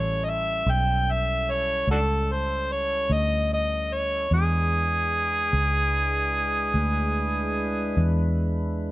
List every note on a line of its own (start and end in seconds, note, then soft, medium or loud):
0.00 0.63 A1 medium
0.00 4.28 G3 medium
0.00 4.28 C#4 medium
0.00 4.28 E4 medium
0.00 4.28 A4 medium
0.00 0.26 C#5 medium
0.24 0.31 D#5 medium
0.30 0.72 E5 loud
0.66 1.85 B1 medium
0.66 1.13 G5 loud
1.12 1.53 E5 loud
1.51 1.90 C#5 medium
1.87 3.06 C#2 medium
1.87 1.99 D4 medium
1.87 1.97 F#4 medium
1.87 2.34 A4 medium
2.32 2.74 C5 medium
2.72 3.14 C#5 loud
3.10 4.28 D2 medium
3.10 3.52 D#5 medium
3.53 3.95 D#5 medium
3.94 4.33 C#5 medium
4.31 5.50 E2 medium
4.31 8.92 G#3 medium
4.31 8.92 D4 medium
4.31 8.92 E4 medium
4.31 8.34 G#4 medium
4.31 8.92 B4 medium
5.53 6.71 C#2 medium
6.74 7.93 D2 medium
7.97 8.92 E2 medium